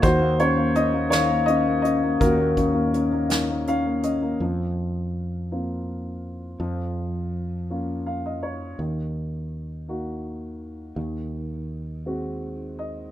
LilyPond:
<<
  \new Staff \with { instrumentName = "Vibraphone" } { \time 6/8 \key ees \dorian \tempo 4. = 55 r4. f''4.~ | f''2 r4 | r2. | r2. |
r2. | r2. | }
  \new Staff \with { instrumentName = "Upright piano" } { \time 6/8 \key ees \dorian << { c''8 des''8 ees''8 des''8 ees''8 ees''8 | bes'4 r4 f''8 ees''8 | r2. | r2 f''16 ees''16 des''8 |
r2. | r2 r8 ees''8 | } \\ { ges'4. r4. | ges'4. r4. | r2. | r2. |
r2. | r2. | } >> }
  \new Staff \with { instrumentName = "Upright piano" } { \time 6/8 \key ees \dorian ees16 bes16 des'16 bes16 des'16 bes16 ees16 bes16 des'16 bes16 des'16 bes16 | bes,16 bes16 des'16 bes16 des'16 bes16 ees16 bes16 des'16 bes16 des'16 bes16 | f4. <bes c' f'>4. | f4. <bes des' f'>4. |
ees4. <bes ees' ges'>4. | ees4. <aes c' ges'>4. | }
  \new Staff \with { instrumentName = "Fretless electric bass" } { \clef bass \time 6/8 \key ees \dorian ees,2. | ees,2. | f,2. | f,2. |
ees,2. | ees,2. | }
  \new DrumStaff \with { instrumentName = "Drums" } \drummode { \time 6/8 <hh bd>8 hh8 hh8 <hh sn>8 hh8 hh8 | <hh bd>8 <hh bd>8 hh8 <hh sn>8 hh8 hh8 | r4. r4. | r4. r4. |
r4. r4. | r4. r4. | }
>>